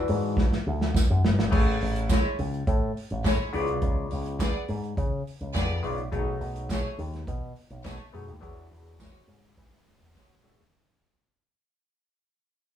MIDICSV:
0, 0, Header, 1, 5, 480
1, 0, Start_track
1, 0, Key_signature, 3, "major"
1, 0, Tempo, 575816
1, 1265, Time_signature, 4, 2, 24, 8
1, 10628, End_track
2, 0, Start_track
2, 0, Title_t, "Violin section"
2, 0, Program_c, 0, 48
2, 1749, Note_on_c, 0, 64, 83
2, 1750, Note_on_c, 0, 73, 93
2, 1751, Note_on_c, 0, 56, 85
2, 1849, Note_off_c, 0, 64, 0
2, 1849, Note_off_c, 0, 73, 0
2, 1850, Note_off_c, 0, 56, 0
2, 2702, Note_on_c, 0, 64, 79
2, 2705, Note_on_c, 0, 73, 96
2, 2710, Note_on_c, 0, 56, 86
2, 2907, Note_off_c, 0, 64, 0
2, 2908, Note_off_c, 0, 73, 0
2, 2911, Note_off_c, 0, 56, 0
2, 3666, Note_on_c, 0, 59, 84
2, 3666, Note_on_c, 0, 68, 85
2, 3666, Note_on_c, 0, 74, 93
2, 3767, Note_off_c, 0, 59, 0
2, 3767, Note_off_c, 0, 68, 0
2, 3767, Note_off_c, 0, 74, 0
2, 4621, Note_on_c, 0, 74, 106
2, 4623, Note_on_c, 0, 68, 90
2, 4628, Note_on_c, 0, 59, 95
2, 4826, Note_off_c, 0, 74, 0
2, 4827, Note_off_c, 0, 68, 0
2, 4830, Note_off_c, 0, 59, 0
2, 5589, Note_on_c, 0, 57, 84
2, 5590, Note_on_c, 0, 73, 91
2, 5591, Note_on_c, 0, 68, 86
2, 5688, Note_off_c, 0, 57, 0
2, 5689, Note_off_c, 0, 73, 0
2, 5690, Note_off_c, 0, 68, 0
2, 6545, Note_on_c, 0, 68, 76
2, 6546, Note_on_c, 0, 73, 87
2, 6547, Note_on_c, 0, 57, 90
2, 6748, Note_off_c, 0, 68, 0
2, 6749, Note_off_c, 0, 57, 0
2, 6749, Note_off_c, 0, 73, 0
2, 7501, Note_on_c, 0, 56, 76
2, 7502, Note_on_c, 0, 66, 90
2, 7504, Note_on_c, 0, 73, 91
2, 7604, Note_off_c, 0, 56, 0
2, 7605, Note_off_c, 0, 66, 0
2, 7606, Note_off_c, 0, 73, 0
2, 8466, Note_on_c, 0, 73, 85
2, 8468, Note_on_c, 0, 56, 88
2, 8471, Note_on_c, 0, 66, 86
2, 8669, Note_off_c, 0, 73, 0
2, 8670, Note_off_c, 0, 56, 0
2, 8672, Note_off_c, 0, 66, 0
2, 10628, End_track
3, 0, Start_track
3, 0, Title_t, "Clav"
3, 0, Program_c, 1, 7
3, 0, Note_on_c, 1, 52, 86
3, 0, Note_on_c, 1, 62, 80
3, 0, Note_on_c, 1, 66, 84
3, 0, Note_on_c, 1, 71, 95
3, 448, Note_off_c, 1, 52, 0
3, 450, Note_off_c, 1, 62, 0
3, 452, Note_off_c, 1, 66, 0
3, 453, Note_off_c, 1, 71, 0
3, 1255, Note_on_c, 1, 57, 75
3, 1260, Note_on_c, 1, 68, 71
3, 1266, Note_on_c, 1, 71, 72
3, 1266, Note_on_c, 1, 73, 86
3, 1880, Note_off_c, 1, 57, 0
3, 1883, Note_off_c, 1, 68, 0
3, 1886, Note_off_c, 1, 71, 0
3, 1886, Note_off_c, 1, 73, 0
3, 2941, Note_on_c, 1, 49, 98
3, 2946, Note_on_c, 1, 59, 82
3, 2950, Note_on_c, 1, 64, 65
3, 2952, Note_on_c, 1, 74, 101
3, 3001, Note_off_c, 1, 64, 0
3, 3002, Note_on_c, 1, 65, 82
3, 3710, Note_off_c, 1, 49, 0
3, 3713, Note_off_c, 1, 59, 0
3, 3716, Note_off_c, 1, 74, 0
3, 3741, Note_off_c, 1, 65, 0
3, 4858, Note_on_c, 1, 49, 93
3, 4860, Note_on_c, 1, 59, 79
3, 4865, Note_on_c, 1, 65, 86
3, 4870, Note_on_c, 1, 74, 99
3, 5016, Note_off_c, 1, 49, 0
3, 5017, Note_off_c, 1, 59, 0
3, 5019, Note_off_c, 1, 65, 0
3, 5022, Note_off_c, 1, 74, 0
3, 5099, Note_on_c, 1, 47, 83
3, 5102, Note_on_c, 1, 57, 76
3, 5105, Note_on_c, 1, 62, 58
3, 5106, Note_on_c, 1, 68, 77
3, 5112, Note_on_c, 1, 73, 90
3, 5158, Note_off_c, 1, 62, 0
3, 5159, Note_on_c, 1, 63, 78
3, 5722, Note_off_c, 1, 47, 0
3, 5723, Note_off_c, 1, 57, 0
3, 5725, Note_off_c, 1, 68, 0
3, 5729, Note_off_c, 1, 73, 0
3, 5752, Note_off_c, 1, 63, 0
3, 6776, Note_on_c, 1, 47, 91
3, 6778, Note_on_c, 1, 57, 75
3, 6783, Note_on_c, 1, 63, 79
3, 6783, Note_on_c, 1, 68, 84
3, 6787, Note_on_c, 1, 73, 96
3, 6935, Note_off_c, 1, 47, 0
3, 6936, Note_off_c, 1, 57, 0
3, 6939, Note_off_c, 1, 63, 0
3, 6939, Note_off_c, 1, 68, 0
3, 6940, Note_off_c, 1, 73, 0
3, 7008, Note_on_c, 1, 52, 88
3, 7010, Note_on_c, 1, 62, 73
3, 7014, Note_on_c, 1, 66, 77
3, 7015, Note_on_c, 1, 68, 76
3, 7021, Note_on_c, 1, 73, 81
3, 7636, Note_off_c, 1, 52, 0
3, 7637, Note_off_c, 1, 62, 0
3, 7640, Note_off_c, 1, 66, 0
3, 7640, Note_off_c, 1, 68, 0
3, 7643, Note_off_c, 1, 73, 0
3, 8688, Note_on_c, 1, 52, 86
3, 8691, Note_on_c, 1, 62, 78
3, 8694, Note_on_c, 1, 66, 82
3, 8698, Note_on_c, 1, 68, 81
3, 8701, Note_on_c, 1, 73, 94
3, 8851, Note_off_c, 1, 52, 0
3, 8853, Note_off_c, 1, 62, 0
3, 8854, Note_off_c, 1, 66, 0
3, 8856, Note_off_c, 1, 68, 0
3, 8858, Note_off_c, 1, 73, 0
3, 10628, End_track
4, 0, Start_track
4, 0, Title_t, "Picked electric bass"
4, 0, Program_c, 2, 34
4, 76, Note_on_c, 2, 44, 102
4, 372, Note_off_c, 2, 44, 0
4, 556, Note_on_c, 2, 38, 86
4, 752, Note_off_c, 2, 38, 0
4, 918, Note_on_c, 2, 42, 84
4, 1012, Note_off_c, 2, 42, 0
4, 1040, Note_on_c, 2, 31, 90
4, 1157, Note_off_c, 2, 31, 0
4, 1157, Note_on_c, 2, 32, 101
4, 1252, Note_off_c, 2, 32, 0
4, 1272, Note_on_c, 2, 33, 111
4, 1470, Note_off_c, 2, 33, 0
4, 1511, Note_on_c, 2, 33, 104
4, 1809, Note_off_c, 2, 33, 0
4, 1990, Note_on_c, 2, 37, 105
4, 2188, Note_off_c, 2, 37, 0
4, 2227, Note_on_c, 2, 45, 107
4, 2426, Note_off_c, 2, 45, 0
4, 2590, Note_on_c, 2, 33, 84
4, 2688, Note_off_c, 2, 33, 0
4, 2706, Note_on_c, 2, 45, 103
4, 2806, Note_off_c, 2, 45, 0
4, 2950, Note_on_c, 2, 37, 90
4, 3071, Note_off_c, 2, 37, 0
4, 3071, Note_on_c, 2, 36, 91
4, 3169, Note_off_c, 2, 36, 0
4, 3185, Note_on_c, 2, 37, 127
4, 3385, Note_off_c, 2, 37, 0
4, 3433, Note_on_c, 2, 37, 109
4, 3730, Note_off_c, 2, 37, 0
4, 3907, Note_on_c, 2, 44, 99
4, 4106, Note_off_c, 2, 44, 0
4, 4148, Note_on_c, 2, 49, 126
4, 4347, Note_off_c, 2, 49, 0
4, 4506, Note_on_c, 2, 37, 83
4, 4605, Note_off_c, 2, 37, 0
4, 4625, Note_on_c, 2, 41, 104
4, 4825, Note_off_c, 2, 41, 0
4, 4857, Note_on_c, 2, 35, 87
4, 5060, Note_off_c, 2, 35, 0
4, 5106, Note_on_c, 2, 35, 125
4, 5306, Note_off_c, 2, 35, 0
4, 5337, Note_on_c, 2, 35, 104
4, 5641, Note_off_c, 2, 35, 0
4, 5822, Note_on_c, 2, 39, 106
4, 6023, Note_off_c, 2, 39, 0
4, 6066, Note_on_c, 2, 47, 114
4, 6266, Note_off_c, 2, 47, 0
4, 6421, Note_on_c, 2, 35, 85
4, 6522, Note_off_c, 2, 35, 0
4, 6545, Note_on_c, 2, 47, 106
4, 6645, Note_off_c, 2, 47, 0
4, 6782, Note_on_c, 2, 42, 87
4, 6883, Note_off_c, 2, 42, 0
4, 6899, Note_on_c, 2, 39, 100
4, 7001, Note_off_c, 2, 39, 0
4, 7027, Note_on_c, 2, 40, 127
4, 7226, Note_off_c, 2, 40, 0
4, 7260, Note_on_c, 2, 40, 104
4, 7563, Note_off_c, 2, 40, 0
4, 7733, Note_on_c, 2, 44, 94
4, 7938, Note_off_c, 2, 44, 0
4, 7984, Note_on_c, 2, 52, 105
4, 8184, Note_off_c, 2, 52, 0
4, 8341, Note_on_c, 2, 40, 94
4, 8443, Note_off_c, 2, 40, 0
4, 8462, Note_on_c, 2, 52, 104
4, 8563, Note_off_c, 2, 52, 0
4, 8700, Note_on_c, 2, 47, 89
4, 8802, Note_off_c, 2, 47, 0
4, 8823, Note_on_c, 2, 39, 87
4, 8924, Note_off_c, 2, 39, 0
4, 10628, End_track
5, 0, Start_track
5, 0, Title_t, "Drums"
5, 65, Note_on_c, 9, 46, 66
5, 148, Note_off_c, 9, 46, 0
5, 307, Note_on_c, 9, 36, 109
5, 317, Note_on_c, 9, 38, 69
5, 390, Note_off_c, 9, 36, 0
5, 401, Note_off_c, 9, 38, 0
5, 437, Note_on_c, 9, 38, 66
5, 521, Note_off_c, 9, 38, 0
5, 678, Note_on_c, 9, 38, 74
5, 761, Note_off_c, 9, 38, 0
5, 788, Note_on_c, 9, 36, 127
5, 800, Note_on_c, 9, 38, 100
5, 804, Note_on_c, 9, 54, 102
5, 872, Note_off_c, 9, 36, 0
5, 884, Note_off_c, 9, 38, 0
5, 888, Note_off_c, 9, 54, 0
5, 1038, Note_on_c, 9, 38, 111
5, 1122, Note_off_c, 9, 38, 0
5, 1157, Note_on_c, 9, 38, 104
5, 1240, Note_off_c, 9, 38, 0
5, 1269, Note_on_c, 9, 36, 122
5, 1271, Note_on_c, 9, 49, 106
5, 1352, Note_off_c, 9, 36, 0
5, 1354, Note_off_c, 9, 49, 0
5, 1511, Note_on_c, 9, 46, 83
5, 1594, Note_off_c, 9, 46, 0
5, 1633, Note_on_c, 9, 42, 64
5, 1716, Note_off_c, 9, 42, 0
5, 1745, Note_on_c, 9, 36, 122
5, 1747, Note_on_c, 9, 54, 96
5, 1749, Note_on_c, 9, 42, 67
5, 1759, Note_on_c, 9, 39, 87
5, 1763, Note_on_c, 9, 38, 116
5, 1829, Note_off_c, 9, 36, 0
5, 1830, Note_off_c, 9, 54, 0
5, 1833, Note_off_c, 9, 42, 0
5, 1842, Note_off_c, 9, 39, 0
5, 1846, Note_off_c, 9, 38, 0
5, 1990, Note_on_c, 9, 46, 67
5, 2073, Note_off_c, 9, 46, 0
5, 2115, Note_on_c, 9, 42, 35
5, 2199, Note_off_c, 9, 42, 0
5, 2228, Note_on_c, 9, 36, 119
5, 2228, Note_on_c, 9, 42, 65
5, 2311, Note_off_c, 9, 36, 0
5, 2311, Note_off_c, 9, 42, 0
5, 2476, Note_on_c, 9, 46, 73
5, 2559, Note_off_c, 9, 46, 0
5, 2587, Note_on_c, 9, 42, 41
5, 2670, Note_off_c, 9, 42, 0
5, 2706, Note_on_c, 9, 36, 116
5, 2709, Note_on_c, 9, 42, 72
5, 2714, Note_on_c, 9, 39, 81
5, 2717, Note_on_c, 9, 38, 103
5, 2719, Note_on_c, 9, 54, 87
5, 2789, Note_off_c, 9, 36, 0
5, 2792, Note_off_c, 9, 42, 0
5, 2797, Note_off_c, 9, 39, 0
5, 2801, Note_off_c, 9, 38, 0
5, 2802, Note_off_c, 9, 54, 0
5, 2946, Note_on_c, 9, 46, 60
5, 3029, Note_off_c, 9, 46, 0
5, 3063, Note_on_c, 9, 42, 49
5, 3146, Note_off_c, 9, 42, 0
5, 3182, Note_on_c, 9, 42, 62
5, 3184, Note_on_c, 9, 36, 127
5, 3265, Note_off_c, 9, 42, 0
5, 3268, Note_off_c, 9, 36, 0
5, 3424, Note_on_c, 9, 46, 83
5, 3507, Note_off_c, 9, 46, 0
5, 3551, Note_on_c, 9, 42, 57
5, 3635, Note_off_c, 9, 42, 0
5, 3663, Note_on_c, 9, 36, 103
5, 3666, Note_on_c, 9, 42, 64
5, 3670, Note_on_c, 9, 54, 104
5, 3676, Note_on_c, 9, 39, 96
5, 3680, Note_on_c, 9, 38, 124
5, 3746, Note_off_c, 9, 36, 0
5, 3749, Note_off_c, 9, 42, 0
5, 3754, Note_off_c, 9, 54, 0
5, 3759, Note_off_c, 9, 39, 0
5, 3763, Note_off_c, 9, 38, 0
5, 3904, Note_on_c, 9, 46, 64
5, 3988, Note_off_c, 9, 46, 0
5, 4032, Note_on_c, 9, 42, 38
5, 4115, Note_off_c, 9, 42, 0
5, 4145, Note_on_c, 9, 36, 123
5, 4149, Note_on_c, 9, 42, 66
5, 4229, Note_off_c, 9, 36, 0
5, 4232, Note_off_c, 9, 42, 0
5, 4395, Note_on_c, 9, 46, 67
5, 4478, Note_off_c, 9, 46, 0
5, 4508, Note_on_c, 9, 42, 44
5, 4591, Note_off_c, 9, 42, 0
5, 4624, Note_on_c, 9, 36, 106
5, 4627, Note_on_c, 9, 42, 69
5, 4632, Note_on_c, 9, 39, 86
5, 4636, Note_on_c, 9, 38, 109
5, 4637, Note_on_c, 9, 54, 95
5, 4707, Note_off_c, 9, 36, 0
5, 4711, Note_off_c, 9, 42, 0
5, 4715, Note_off_c, 9, 39, 0
5, 4719, Note_off_c, 9, 38, 0
5, 4720, Note_off_c, 9, 54, 0
5, 4866, Note_on_c, 9, 46, 68
5, 4950, Note_off_c, 9, 46, 0
5, 4984, Note_on_c, 9, 42, 45
5, 5068, Note_off_c, 9, 42, 0
5, 5104, Note_on_c, 9, 36, 122
5, 5107, Note_on_c, 9, 42, 68
5, 5188, Note_off_c, 9, 36, 0
5, 5191, Note_off_c, 9, 42, 0
5, 5345, Note_on_c, 9, 46, 70
5, 5428, Note_off_c, 9, 46, 0
5, 5466, Note_on_c, 9, 42, 65
5, 5549, Note_off_c, 9, 42, 0
5, 5580, Note_on_c, 9, 36, 110
5, 5582, Note_on_c, 9, 42, 64
5, 5586, Note_on_c, 9, 54, 89
5, 5591, Note_on_c, 9, 39, 93
5, 5595, Note_on_c, 9, 38, 113
5, 5663, Note_off_c, 9, 36, 0
5, 5665, Note_off_c, 9, 42, 0
5, 5670, Note_off_c, 9, 54, 0
5, 5675, Note_off_c, 9, 39, 0
5, 5679, Note_off_c, 9, 38, 0
5, 5824, Note_on_c, 9, 46, 61
5, 5908, Note_off_c, 9, 46, 0
5, 5947, Note_on_c, 9, 42, 37
5, 5958, Note_on_c, 9, 38, 36
5, 6031, Note_off_c, 9, 42, 0
5, 6041, Note_off_c, 9, 38, 0
5, 6063, Note_on_c, 9, 36, 113
5, 6066, Note_on_c, 9, 42, 68
5, 6146, Note_off_c, 9, 36, 0
5, 6150, Note_off_c, 9, 42, 0
5, 6303, Note_on_c, 9, 46, 73
5, 6386, Note_off_c, 9, 46, 0
5, 6422, Note_on_c, 9, 42, 46
5, 6506, Note_off_c, 9, 42, 0
5, 6542, Note_on_c, 9, 36, 113
5, 6543, Note_on_c, 9, 42, 76
5, 6547, Note_on_c, 9, 39, 93
5, 6551, Note_on_c, 9, 38, 96
5, 6554, Note_on_c, 9, 54, 95
5, 6625, Note_off_c, 9, 36, 0
5, 6626, Note_off_c, 9, 42, 0
5, 6631, Note_off_c, 9, 39, 0
5, 6635, Note_off_c, 9, 38, 0
5, 6637, Note_off_c, 9, 54, 0
5, 6790, Note_on_c, 9, 46, 64
5, 6873, Note_off_c, 9, 46, 0
5, 6904, Note_on_c, 9, 42, 49
5, 6987, Note_off_c, 9, 42, 0
5, 7024, Note_on_c, 9, 36, 113
5, 7026, Note_on_c, 9, 42, 61
5, 7108, Note_off_c, 9, 36, 0
5, 7109, Note_off_c, 9, 42, 0
5, 7267, Note_on_c, 9, 46, 73
5, 7351, Note_off_c, 9, 46, 0
5, 7389, Note_on_c, 9, 42, 59
5, 7472, Note_off_c, 9, 42, 0
5, 7500, Note_on_c, 9, 36, 115
5, 7506, Note_on_c, 9, 54, 94
5, 7511, Note_on_c, 9, 39, 86
5, 7515, Note_on_c, 9, 38, 104
5, 7583, Note_off_c, 9, 36, 0
5, 7589, Note_off_c, 9, 54, 0
5, 7594, Note_off_c, 9, 39, 0
5, 7598, Note_off_c, 9, 38, 0
5, 7742, Note_on_c, 9, 46, 61
5, 7825, Note_off_c, 9, 46, 0
5, 7864, Note_on_c, 9, 42, 35
5, 7947, Note_off_c, 9, 42, 0
5, 7981, Note_on_c, 9, 36, 107
5, 7993, Note_on_c, 9, 38, 64
5, 8064, Note_off_c, 9, 36, 0
5, 8077, Note_off_c, 9, 38, 0
5, 8111, Note_on_c, 9, 38, 54
5, 8194, Note_off_c, 9, 38, 0
5, 8234, Note_on_c, 9, 38, 67
5, 8317, Note_off_c, 9, 38, 0
5, 8462, Note_on_c, 9, 36, 107
5, 8474, Note_on_c, 9, 38, 83
5, 8475, Note_on_c, 9, 54, 97
5, 8545, Note_off_c, 9, 36, 0
5, 8558, Note_off_c, 9, 38, 0
5, 8558, Note_off_c, 9, 54, 0
5, 8713, Note_on_c, 9, 38, 94
5, 8796, Note_off_c, 9, 38, 0
5, 8836, Note_on_c, 9, 38, 94
5, 8919, Note_off_c, 9, 38, 0
5, 10628, End_track
0, 0, End_of_file